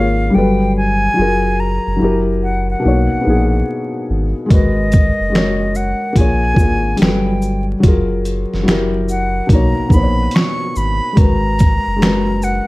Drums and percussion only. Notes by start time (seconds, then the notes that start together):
4.50 kick, closed hi-hat
4.92 kick, closed hi-hat, shaker
5.35 finger snap, snare, closed hi-hat
5.75 shaker
6.16 kick, closed hi-hat
6.56 kick, shaker
6.97 closed hi-hat
7.02 finger snap, snare
7.42 shaker
7.83 kick, closed hi-hat
8.25 closed hi-hat, shaker
8.54 snare
8.68 finger snap, snare, closed hi-hat
9.09 shaker
9.49 kick, closed hi-hat
9.90 kick, shaker
10.31 closed hi-hat
10.36 finger snap, snare
10.76 shaker
11.17 kick, closed hi-hat
11.59 kick, closed hi-hat, shaker
12.02 finger snap, snare, closed hi-hat
12.42 shaker